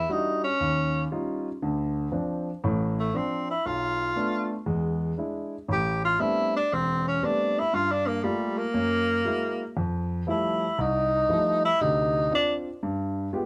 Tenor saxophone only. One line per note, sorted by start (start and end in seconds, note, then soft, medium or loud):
0.00 0.13 E4 medium
0.12 0.43 D#4 medium
0.44 1.07 C#4 medium
3.00 3.18 A3 medium
3.16 3.50 C4 medium
3.50 3.68 E4 medium
3.67 4.52 F4 medium
5.72 6.03 G4 medium
6.05 6.22 F4 medium
6.21 6.55 E4 medium
6.56 6.75 D4 medium
6.73 7.07 C4 medium
7.07 7.26 C#4 medium
7.25 7.60 D4 medium
7.59 7.76 E4 medium
7.75 7.93 F4 medium
7.92 8.08 D4 medium
8.07 8.25 A#3 medium
8.24 8.59 G3 medium
8.58 9.76 A#3 medium
10.30 10.82 E4 medium
10.81 11.64 D#4 medium
11.65 11.82 E4 loud
11.81 12.31 D#4 medium
12.35 12.54 D4 medium